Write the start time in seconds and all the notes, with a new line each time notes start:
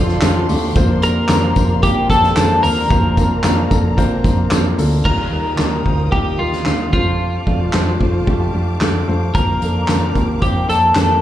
Already playing: F2 C3 A3 C4 D4 F4 A4 C5 D5 F5 C6
0.08 snare
0.21 F2 F3 A3 C4 D4 F4 G4 A4, snare, clap, closed hi-hat, tambourine
0.49 D#2 A3 C4 D4 F4 G4 A4, open hi-hat, tambourine
0.75 F2 F3 A#3 C4 D4 F4 A#4 C5, kick, closed hi-hat, tambourine
1.02 A#3 C4 D4 F4 G4 A#4, closed hi-hat, tambourine
1.29 F2 F3 A#3 C4 D4 F4 A#4 C5, snare, clap, closed hi-hat, tambourine
1.56 F2 A#3 C4 D4 F4 A#4 C5, kick, closed hi-hat, tambourine
1.82 F3 A#3 C4 D4 F4 G4 A#4, kick, closed hi-hat, tambourine
2.09 F2 A#3 C4 D4 F4 A4 A#4 C5, kick, closed hi-hat, tambourine
2.23 snare
2.36 F2 F3 A#3 C4 D4 F4 A#4 C5, snare, clap, closed hi-hat, tambourine
2.62 D#2 A#3 C4 D4 F4 A#4 C5, open hi-hat, tambourine
2.89 F2 F3 A#3 C4 D4 F4 A#4 C5 A#5, kick, closed hi-hat, tambourine
3.17 A#3 C4 D4 F4 A#4, kick, closed hi-hat, tambourine
3.43 F2 F3 A#3 C4 D4 F4 A#4 D5, snare, clap, closed hi-hat, tambourine
3.71 F2 A#3 C4 D4 F4 A4 A#4 A#5, kick, closed hi-hat, tambourine
3.97 F3 A#3 C4 D4 F4 A#4 C5 G5, kick, closed hi-hat
4.24 F2 A#3 C4 D4 F4 A#4 C5, kick, closed hi-hat, tambourine
4.38 F5
4.51 F2 F3 A#3 C4 D4 F4 A#4 C5 D5, snare, clap, closed hi-hat, tambourine
4.77 D2 A#3 C4 D4 F4 A4 A#4, open hi-hat, tambourine
5.05 D#2 A#2 G3 D#4 F4 A#4 F5 G5 D#6, kick, crash
5.32 D#2 G3 D#4 F4 A#4
5.58 D#2 G3 D#4 F4 A#4, snare, clap
5.86 D2 G3 D#4 F4 C5, kick
6.12 D#2 G3 D#4 F4 G4 A#4, kick
6.39 D#2 G3 D#4 F4 A#4
6.53 snare
6.66 D#2 G3 D#4 F4 A#4, snare, clap
6.93 F2 C3 A3 D4 F4 C5 A5 D6, kick
7.46 F2 A3 D4 F4 D5, kick
7.73 F2 A3 D4 F4 C5, snare, clap
8.00 F2 A3 D4 F4 C5, kick
8.27 F2 A3 D4 F4 G4, kick
8.54 F2 A3 D4 F4 G4
8.81 F2 A3 D4 F4 A4, snare, clap
9.08 F2 A3 D4 F4 C5
9.34 F2 F3 A#3 C4 D4 F4 A#4 C5, kick, closed hi-hat
9.61 F2 A#3 C4 D4 F4 A4 A#4, closed hi-hat
9.88 F2 F3 A#3 C4 D4 F4 A#4 C5, snare, clap, closed hi-hat
10.15 D#2 A#3 C4 D4 F4 G4 A#4, kick, closed hi-hat
10.42 F2 F3 A#3 C4 D4 F4 G4 A#4 C5, kick, closed hi-hat
10.68 F2 A#3 C4 D4 F4 A4 A#4 C5, closed hi-hat
10.95 F2 F3 A#3 C4 D4 F4 G4 A#4, snare, clap, closed hi-hat